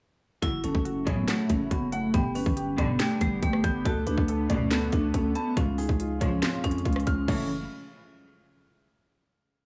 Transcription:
0.42 0.63 F#1 loud
0.42 0.52 A1 medium
0.42 0.52 F#2 medium
0.42 0.52 C#3 loud
0.42 2.12 C#3 medium
0.42 2.12 F#3 medium
0.42 2.12 A3 medium
0.42 0.59 E4 loud
0.42 2.12 E4 medium
0.42 0.84 F#4 loud
0.42 kick loud
0.42 closed hi-hat medium
0.64 0.74 F#1 loud
0.64 1.04 C#4 medium
0.64 1.71 A4 medium
0.64 closed hi-hat medium
0.75 1.06 F#1 loud
0.75 kick loud
0.85 1.27 F#4 medium
0.85 closed hi-hat medium
1.06 1.27 F#1 loud
1.06 1.37 A1 loud
1.06 1.37 F#2 loud
1.06 1.37 C#3 loud
1.06 1.23 B3 medium
1.06 2.14 C#5 medium
1.06 kick medium
1.06 closed hi-hat medium
1.28 1.45 A3 medium
1.28 1.69 F#4 loud
1.28 snare loud
1.28 clap medium
1.28 closed hi-hat medium
1.49 1.70 F#1 loud
1.49 1.66 C#4 medium
1.49 kick medium
1.49 closed hi-hat medium
1.71 2.12 F#1 loud
1.71 1.88 B3 medium
1.71 2.14 F#4 medium
1.71 kick medium
1.71 closed hi-hat medium
1.92 2.09 A3 medium
1.92 2.14 F#5 medium
1.92 closed hi-hat medium
2.14 2.45 G1 loud
2.14 2.23 B1 medium
2.14 2.23 G2 medium
2.14 2.23 D3 loud
2.14 5.53 D3 medium
2.14 3.84 G3 medium
2.14 2.30 B3 loud
2.14 5.53 B3 medium
2.14 3.84 G4 medium
2.14 2.55 G4 medium
2.14 kick loud
2.14 closed hi-hat medium
2.35 2.76 C#4 medium
2.35 3.42 B4 medium
2.35 open hi-hat medium
2.46 2.77 G1 loud
2.46 kick loud
2.57 2.99 G4 medium
2.57 closed hi-hat medium
2.78 2.99 G1 loud
2.78 3.09 B1 loud
2.78 3.09 G2 loud
2.78 3.09 D3 loud
2.78 2.95 B3 medium
2.78 3.85 D5 medium
2.78 kick medium
2.78 closed hi-hat medium
2.99 3.16 A3 medium
2.99 3.41 G4 loud
2.99 snare loud
2.99 clap medium
2.99 closed hi-hat medium
3.21 3.42 G1 loud
3.21 3.38 G3 medium
3.21 kick medium
3.21 closed hi-hat medium
3.43 3.63 G1 loud
3.43 3.59 A3 medium
3.43 3.85 G4 medium
3.43 kick medium
3.43 closed hi-hat medium
3.53 cross-stick loud
3.64 3.85 G1 loud
3.64 3.81 B3 medium
3.64 3.85 G6 medium
3.64 kick loud
3.64 closed hi-hat medium
3.85 3.95 F#1 medium
3.85 3.95 D2 medium
3.85 4.06 D2 loud
3.85 3.95 B2 loud
3.85 5.55 A3 medium
3.85 4.02 F#4 loud
3.85 5.55 F#4 medium
3.85 4.27 A4 loud
3.85 kick loud
3.85 closed hi-hat medium
4.07 4.17 D2 loud
4.07 4.47 D4 medium
4.07 5.14 B4 medium
4.07 closed hi-hat medium
4.18 4.48 D2 loud
4.18 kick medium
4.28 4.70 A4 medium
4.28 closed hi-hat medium
4.50 4.80 F#1 loud
4.50 4.80 D2 medium
4.50 4.91 D2 loud
4.50 4.80 B2 loud
4.50 4.66 C#4 medium
4.50 5.57 D5 medium
4.50 kick medium
4.50 closed hi-hat medium
4.71 4.87 B3 medium
4.71 5.13 A4 medium
4.71 snare loud
4.71 clap medium
4.71 closed hi-hat medium
4.92 5.13 D2 loud
4.92 5.09 D4 medium
4.92 kick medium
4.92 closed hi-hat medium
5.14 5.35 D2 loud
5.14 5.30 C#4 medium
5.14 5.57 A4 medium
5.14 kick loud
5.14 closed hi-hat medium
5.35 5.52 B3 medium
5.35 5.57 A5 medium
5.35 closed hi-hat medium
5.57 5.66 G#1 loud
5.57 5.88 C#2 loud
5.57 5.66 F2 medium
5.57 7.27 C#3 medium
5.57 5.66 C#3 loud
5.57 7.27 F3 medium
5.57 7.27 G#3 medium
5.57 5.73 C#4 loud
5.57 7.27 F4 medium
5.57 5.98 F4 medium
5.57 kick loud
5.57 closed hi-hat medium
5.78 6.18 D#4 medium
5.78 6.85 G#4 medium
5.78 open hi-hat medium
5.89 6.20 C#2 loud
5.89 kick loud
6.00 6.41 F4 medium
6.00 closed hi-hat medium
6.21 6.52 C#2 loud
6.21 6.42 C#2 loud
6.21 6.52 G#2 loud
6.21 6.52 F3 loud
6.21 6.37 C#4 medium
6.21 7.27 C#5 medium
6.21 kick medium
6.21 closed hi-hat medium
6.42 6.59 C4 medium
6.42 6.84 F4 medium
6.42 snare loud
6.42 clap medium
6.42 closed hi-hat medium
6.64 6.85 F2 loud
6.64 7.24 C#4 medium
6.64 kick medium
6.64 closed hi-hat medium
6.71 closed hi-hat medium
6.78 closed hi-hat medium
6.85 7.06 C#2 loud
6.85 7.28 F4 medium
6.85 kick medium
6.85 closed hi-hat medium
6.93 cross-stick loud
6.93 closed hi-hat soft
7.00 closed hi-hat soft
7.07 7.27 C#2 loud
7.07 7.28 F6 medium
7.07 kick loud
7.07 closed hi-hat medium
7.28 7.68 F#1 loud
7.28 7.48 C#2 loud
7.28 7.48 A2 medium
7.28 7.48 E3 loud
7.28 7.48 C#4 medium
7.28 7.48 E4 medium
7.28 7.48 F#4 medium
7.28 7.48 A4 medium
7.28 7.48 C#5 loud
7.28 kick loud
7.28 crash medium

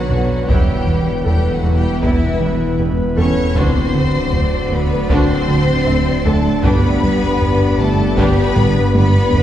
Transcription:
0.00 0.49 B1 medium
0.00 0.44 D3 medium
0.00 0.44 D3 loud
0.00 0.48 F#3 medium
0.00 3.52 B3 medium
0.00 0.44 F#4 loud
0.00 0.45 F#4 medium
0.00 3.52 B4 loud
0.00 0.44 C#5 medium
0.00 0.48 F#5 medium
0.09 0.25 B1 soft
0.09 0.19 B1 soft
0.09 0.33 B2 medium
0.09 0.18 C#4 medium
0.09 0.18 D4 medium
0.09 taiko low soft
0.48 3.57 E1 medium
0.48 0.64 E1 medium
0.48 0.71 E2 medium
0.48 0.57 E2 medium
0.48 3.56 E3 medium
0.48 1.23 G3 medium
0.48 3.56 B3 medium
0.48 0.84 B3 medium
0.48 0.84 E4 medium
0.48 3.56 E4 medium
0.48 3.52 E4 medium
0.48 1.23 G4 medium
0.48 1.23 G5 medium
0.48 taiko medium
0.86 1.10 E3 medium
0.86 taiko low soft
1.24 1.49 E2 medium
1.24 1.50 G3 medium
1.24 3.52 A3 soft
1.24 1.51 G4 medium
1.24 3.15 A4 medium
1.24 1.50 G5 medium
1.24 taiko low medium
1.51 1.77 F#3 medium
1.51 1.77 F#4 medium
1.51 1.76 F#5 medium
1.63 1.79 E1 medium
1.63 1.87 E2 medium
1.63 1.72 E2 medium
1.63 1.71 G3 soft
1.63 1.71 B3 soft
1.77 2.02 G3 medium
1.77 2.02 G4 medium
1.77 2.02 G5 medium
2.01 2.17 E1 medium
2.01 2.10 E2 medium
2.01 2.25 E2 medium
2.01 2.79 E3 medium
2.01 2.38 B3 medium
2.01 2.38 E4 medium
2.01 2.78 E4 medium
2.01 2.77 E5 medium
2.01 taiko medium
2.40 2.56 E1 soft
2.40 2.49 E2 soft
2.40 2.64 E3 medium
2.40 2.48 G3 medium
2.40 2.48 B3 medium
2.78 2.94 E1 medium
2.78 3.02 E2 medium
2.78 2.87 E2 medium
2.78 2.87 E3 medium
2.78 2.87 G3 medium
3.17 3.32 E1 soft
3.17 3.40 E2 medium
3.17 3.26 E2 medium
3.17 3.25 G3 medium
3.17 3.25 B3 medium
3.17 3.54 C#4 medium
3.17 5.44 A4 medium
3.17 3.53 C#5 medium
3.17 3.53 C#6 medium
3.17 taiko low medium
3.55 6.65 D1 medium
3.55 3.71 D2 medium
3.55 3.79 D2 medium
3.55 3.64 D2 medium
3.55 6.63 F#3 medium
3.55 6.63 A3 medium
3.55 4.69 C4 medium
3.55 9.43 D4 medium
3.55 3.92 D4 medium
3.55 9.43 D4 medium
3.55 3.92 F#4 medium
3.55 6.47 F#4 medium
3.55 4.71 C5 medium
3.55 9.43 D5 medium
3.55 4.71 C6 medium
3.55 taiko medium
3.94 4.18 D3 medium
3.94 taiko low soft
4.32 4.56 D2 medium
4.32 taiko low medium
4.70 4.86 D2 medium
4.70 4.79 D2 soft
4.70 4.95 D2 medium
4.70 4.80 C3 medium
4.70 5.10 B3 medium
4.70 4.80 D4 medium
4.70 5.10 B4 medium
4.70 6.97 D5 medium
4.70 5.10 B5 medium
5.09 5.25 D2 medium
5.09 5.33 D2 medium
5.09 5.18 D2 medium
5.09 6.25 C4 medium
5.09 5.46 D4 loud
5.09 5.46 F#4 medium
5.09 6.25 C5 loud
5.09 6.25 C6 loud
5.09 taiko medium
5.48 5.56 D2 medium
5.48 5.64 D2 medium
5.48 5.72 D3 medium
5.48 5.56 C4 medium
5.48 5.56 D4 medium
5.87 6.02 D2 medium
5.87 5.95 D2 medium
5.87 6.11 D2 medium
5.87 5.95 A3 medium
5.87 5.95 C4 medium
5.87 8.13 E5 medium
6.25 6.41 D2 medium
6.25 6.34 D2 medium
6.25 6.49 D2 medium
6.25 6.64 A3 medium
6.25 6.33 C4 medium
6.25 6.33 D4 medium
6.25 6.64 A4 medium
6.25 8.52 A4 medium
6.25 6.64 A5 medium
6.25 taiko low medium
6.63 9.43 G1 medium
6.63 6.71 G1 medium
6.63 6.79 G1 medium
6.63 6.87 G2 medium
6.63 9.43 G3 medium
6.63 9.43 B3 medium
6.63 7.77 B3 loud
6.63 6.99 D4 medium
6.63 6.99 G4 medium
6.63 9.43 G4 medium
6.63 7.77 B4 loud
6.63 7.76 B5 loud
6.63 taiko medium
7.02 7.26 G3 medium
7.02 taiko low soft
7.41 7.64 G2 medium
7.41 taiko low medium
7.79 7.87 G1 medium
7.79 7.95 G1 medium
7.79 8.02 G2 medium
7.79 8.18 A3 loud
7.79 7.87 B3 medium
7.79 7.87 D4 medium
7.79 8.17 A4 medium
7.79 8.18 A5 loud
8.16 8.25 G1 loud
8.16 8.33 G1 medium
8.16 8.41 G2 loud
8.16 8.93 B3 loud
8.16 8.53 D4 loud
8.16 8.53 G4 loud
8.16 8.93 B4 loud
8.16 8.93 B5 loud
8.16 taiko medium
8.55 8.64 G1 medium
8.55 8.71 G1 medium
8.55 8.79 G3 medium
8.55 9.43 B3 medium
8.55 8.64 B3 medium
8.55 8.64 D4 medium
8.55 9.43 B4 medium
8.55 taiko low-mid medium
8.94 9.03 G1 medium
8.94 9.10 G1 medium
8.94 9.18 G2 medium
8.94 9.03 G3 medium
8.94 9.43 B3 loud
8.94 9.03 B3 medium
8.94 9.43 B4 loud
8.94 9.43 B5 loud
8.94 taiko high medium
9.33 9.43 G1 medium
9.33 9.41 G1 medium
9.33 9.43 G2 medium
9.33 9.41 B3 medium
9.33 9.41 D4 medium
9.33 taiko low loud

